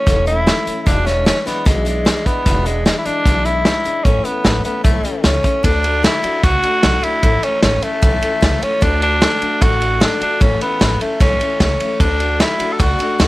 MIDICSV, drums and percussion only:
0, 0, Header, 1, 2, 480
1, 0, Start_track
1, 0, Key_signature, 3, "major"
1, 0, Tempo, 397878
1, 1042, Time_signature, 4, 2, 24, 8
1, 16016, End_track
2, 0, Start_track
2, 0, Title_t, "Drums"
2, 82, Note_on_c, 9, 36, 108
2, 85, Note_on_c, 9, 38, 31
2, 85, Note_on_c, 9, 42, 80
2, 202, Note_off_c, 9, 36, 0
2, 205, Note_off_c, 9, 38, 0
2, 205, Note_off_c, 9, 42, 0
2, 326, Note_on_c, 9, 42, 56
2, 447, Note_off_c, 9, 42, 0
2, 569, Note_on_c, 9, 38, 115
2, 569, Note_on_c, 9, 42, 89
2, 689, Note_off_c, 9, 38, 0
2, 689, Note_off_c, 9, 42, 0
2, 811, Note_on_c, 9, 42, 63
2, 931, Note_off_c, 9, 42, 0
2, 1045, Note_on_c, 9, 36, 105
2, 1049, Note_on_c, 9, 38, 32
2, 1049, Note_on_c, 9, 42, 78
2, 1166, Note_off_c, 9, 36, 0
2, 1170, Note_off_c, 9, 38, 0
2, 1170, Note_off_c, 9, 42, 0
2, 1288, Note_on_c, 9, 38, 32
2, 1288, Note_on_c, 9, 42, 58
2, 1409, Note_off_c, 9, 38, 0
2, 1409, Note_off_c, 9, 42, 0
2, 1525, Note_on_c, 9, 38, 117
2, 1525, Note_on_c, 9, 42, 82
2, 1646, Note_off_c, 9, 38, 0
2, 1646, Note_off_c, 9, 42, 0
2, 1770, Note_on_c, 9, 38, 35
2, 1770, Note_on_c, 9, 42, 66
2, 1891, Note_off_c, 9, 38, 0
2, 1891, Note_off_c, 9, 42, 0
2, 2005, Note_on_c, 9, 38, 35
2, 2005, Note_on_c, 9, 42, 89
2, 2006, Note_on_c, 9, 36, 113
2, 2125, Note_off_c, 9, 38, 0
2, 2125, Note_off_c, 9, 42, 0
2, 2127, Note_off_c, 9, 36, 0
2, 2243, Note_on_c, 9, 42, 64
2, 2364, Note_off_c, 9, 42, 0
2, 2487, Note_on_c, 9, 38, 127
2, 2487, Note_on_c, 9, 42, 94
2, 2607, Note_off_c, 9, 38, 0
2, 2607, Note_off_c, 9, 42, 0
2, 2726, Note_on_c, 9, 42, 65
2, 2727, Note_on_c, 9, 36, 80
2, 2847, Note_off_c, 9, 42, 0
2, 2848, Note_off_c, 9, 36, 0
2, 2967, Note_on_c, 9, 38, 32
2, 2967, Note_on_c, 9, 42, 91
2, 2968, Note_on_c, 9, 36, 109
2, 3087, Note_off_c, 9, 38, 0
2, 3087, Note_off_c, 9, 42, 0
2, 3089, Note_off_c, 9, 36, 0
2, 3207, Note_on_c, 9, 42, 65
2, 3328, Note_off_c, 9, 42, 0
2, 3448, Note_on_c, 9, 38, 112
2, 3448, Note_on_c, 9, 42, 84
2, 3569, Note_off_c, 9, 38, 0
2, 3569, Note_off_c, 9, 42, 0
2, 3685, Note_on_c, 9, 42, 63
2, 3806, Note_off_c, 9, 42, 0
2, 3926, Note_on_c, 9, 38, 33
2, 3926, Note_on_c, 9, 42, 85
2, 3927, Note_on_c, 9, 36, 106
2, 4046, Note_off_c, 9, 38, 0
2, 4046, Note_off_c, 9, 42, 0
2, 4047, Note_off_c, 9, 36, 0
2, 4167, Note_on_c, 9, 42, 56
2, 4288, Note_off_c, 9, 42, 0
2, 4405, Note_on_c, 9, 38, 118
2, 4405, Note_on_c, 9, 42, 89
2, 4525, Note_off_c, 9, 38, 0
2, 4525, Note_off_c, 9, 42, 0
2, 4649, Note_on_c, 9, 42, 68
2, 4769, Note_off_c, 9, 42, 0
2, 4885, Note_on_c, 9, 42, 72
2, 4887, Note_on_c, 9, 36, 100
2, 5006, Note_off_c, 9, 42, 0
2, 5008, Note_off_c, 9, 36, 0
2, 5126, Note_on_c, 9, 42, 56
2, 5246, Note_off_c, 9, 42, 0
2, 5364, Note_on_c, 9, 38, 113
2, 5364, Note_on_c, 9, 42, 79
2, 5485, Note_off_c, 9, 38, 0
2, 5485, Note_off_c, 9, 42, 0
2, 5608, Note_on_c, 9, 42, 64
2, 5728, Note_off_c, 9, 42, 0
2, 5845, Note_on_c, 9, 42, 80
2, 5847, Note_on_c, 9, 36, 108
2, 5966, Note_off_c, 9, 42, 0
2, 5967, Note_off_c, 9, 36, 0
2, 6089, Note_on_c, 9, 42, 62
2, 6209, Note_off_c, 9, 42, 0
2, 6320, Note_on_c, 9, 38, 118
2, 6320, Note_on_c, 9, 42, 92
2, 6441, Note_off_c, 9, 38, 0
2, 6441, Note_off_c, 9, 42, 0
2, 6565, Note_on_c, 9, 36, 89
2, 6565, Note_on_c, 9, 42, 74
2, 6686, Note_off_c, 9, 36, 0
2, 6686, Note_off_c, 9, 42, 0
2, 6806, Note_on_c, 9, 36, 107
2, 6807, Note_on_c, 9, 51, 87
2, 6926, Note_off_c, 9, 36, 0
2, 6927, Note_off_c, 9, 51, 0
2, 7046, Note_on_c, 9, 51, 67
2, 7166, Note_off_c, 9, 51, 0
2, 7290, Note_on_c, 9, 38, 104
2, 7290, Note_on_c, 9, 51, 91
2, 7410, Note_off_c, 9, 38, 0
2, 7410, Note_off_c, 9, 51, 0
2, 7525, Note_on_c, 9, 51, 64
2, 7645, Note_off_c, 9, 51, 0
2, 7763, Note_on_c, 9, 38, 35
2, 7763, Note_on_c, 9, 51, 82
2, 7764, Note_on_c, 9, 36, 116
2, 7883, Note_off_c, 9, 38, 0
2, 7883, Note_off_c, 9, 51, 0
2, 7884, Note_off_c, 9, 36, 0
2, 8003, Note_on_c, 9, 51, 60
2, 8124, Note_off_c, 9, 51, 0
2, 8241, Note_on_c, 9, 38, 127
2, 8241, Note_on_c, 9, 51, 88
2, 8361, Note_off_c, 9, 38, 0
2, 8361, Note_off_c, 9, 51, 0
2, 8485, Note_on_c, 9, 51, 66
2, 8606, Note_off_c, 9, 51, 0
2, 8721, Note_on_c, 9, 51, 79
2, 8723, Note_on_c, 9, 36, 102
2, 8841, Note_off_c, 9, 51, 0
2, 8844, Note_off_c, 9, 36, 0
2, 8963, Note_on_c, 9, 51, 62
2, 9084, Note_off_c, 9, 51, 0
2, 9199, Note_on_c, 9, 38, 116
2, 9199, Note_on_c, 9, 51, 84
2, 9320, Note_off_c, 9, 38, 0
2, 9320, Note_off_c, 9, 51, 0
2, 9438, Note_on_c, 9, 51, 64
2, 9559, Note_off_c, 9, 51, 0
2, 9681, Note_on_c, 9, 51, 93
2, 9682, Note_on_c, 9, 36, 111
2, 9801, Note_off_c, 9, 51, 0
2, 9803, Note_off_c, 9, 36, 0
2, 9921, Note_on_c, 9, 51, 67
2, 10042, Note_off_c, 9, 51, 0
2, 10162, Note_on_c, 9, 36, 87
2, 10163, Note_on_c, 9, 38, 125
2, 10163, Note_on_c, 9, 51, 93
2, 10283, Note_off_c, 9, 36, 0
2, 10284, Note_off_c, 9, 38, 0
2, 10284, Note_off_c, 9, 51, 0
2, 10404, Note_on_c, 9, 51, 72
2, 10525, Note_off_c, 9, 51, 0
2, 10641, Note_on_c, 9, 51, 81
2, 10642, Note_on_c, 9, 36, 117
2, 10761, Note_off_c, 9, 51, 0
2, 10762, Note_off_c, 9, 36, 0
2, 10881, Note_on_c, 9, 51, 66
2, 11002, Note_off_c, 9, 51, 0
2, 11120, Note_on_c, 9, 38, 115
2, 11120, Note_on_c, 9, 51, 90
2, 11240, Note_off_c, 9, 38, 0
2, 11240, Note_off_c, 9, 51, 0
2, 11361, Note_on_c, 9, 51, 65
2, 11482, Note_off_c, 9, 51, 0
2, 11601, Note_on_c, 9, 36, 117
2, 11603, Note_on_c, 9, 51, 88
2, 11722, Note_off_c, 9, 36, 0
2, 11723, Note_off_c, 9, 51, 0
2, 11841, Note_on_c, 9, 51, 58
2, 11962, Note_off_c, 9, 51, 0
2, 12079, Note_on_c, 9, 38, 120
2, 12079, Note_on_c, 9, 51, 85
2, 12200, Note_off_c, 9, 38, 0
2, 12200, Note_off_c, 9, 51, 0
2, 12322, Note_on_c, 9, 51, 65
2, 12443, Note_off_c, 9, 51, 0
2, 12559, Note_on_c, 9, 36, 115
2, 12561, Note_on_c, 9, 51, 80
2, 12680, Note_off_c, 9, 36, 0
2, 12682, Note_off_c, 9, 51, 0
2, 12802, Note_on_c, 9, 51, 59
2, 12923, Note_off_c, 9, 51, 0
2, 13040, Note_on_c, 9, 38, 106
2, 13040, Note_on_c, 9, 51, 85
2, 13161, Note_off_c, 9, 38, 0
2, 13161, Note_off_c, 9, 51, 0
2, 13281, Note_on_c, 9, 51, 62
2, 13402, Note_off_c, 9, 51, 0
2, 13518, Note_on_c, 9, 36, 111
2, 13521, Note_on_c, 9, 38, 34
2, 13521, Note_on_c, 9, 51, 84
2, 13638, Note_off_c, 9, 36, 0
2, 13641, Note_off_c, 9, 38, 0
2, 13641, Note_off_c, 9, 51, 0
2, 13762, Note_on_c, 9, 51, 59
2, 13883, Note_off_c, 9, 51, 0
2, 13997, Note_on_c, 9, 36, 91
2, 13998, Note_on_c, 9, 38, 117
2, 13998, Note_on_c, 9, 51, 95
2, 14118, Note_off_c, 9, 36, 0
2, 14118, Note_off_c, 9, 38, 0
2, 14118, Note_off_c, 9, 51, 0
2, 14239, Note_on_c, 9, 51, 71
2, 14359, Note_off_c, 9, 51, 0
2, 14478, Note_on_c, 9, 36, 115
2, 14479, Note_on_c, 9, 51, 91
2, 14598, Note_off_c, 9, 36, 0
2, 14600, Note_off_c, 9, 51, 0
2, 14718, Note_on_c, 9, 51, 65
2, 14839, Note_off_c, 9, 51, 0
2, 14959, Note_on_c, 9, 38, 103
2, 14959, Note_on_c, 9, 51, 90
2, 15080, Note_off_c, 9, 38, 0
2, 15080, Note_off_c, 9, 51, 0
2, 15197, Note_on_c, 9, 51, 70
2, 15318, Note_off_c, 9, 51, 0
2, 15438, Note_on_c, 9, 36, 109
2, 15440, Note_on_c, 9, 51, 87
2, 15559, Note_off_c, 9, 36, 0
2, 15560, Note_off_c, 9, 51, 0
2, 15682, Note_on_c, 9, 51, 61
2, 15803, Note_off_c, 9, 51, 0
2, 15921, Note_on_c, 9, 38, 118
2, 15921, Note_on_c, 9, 51, 92
2, 16016, Note_off_c, 9, 38, 0
2, 16016, Note_off_c, 9, 51, 0
2, 16016, End_track
0, 0, End_of_file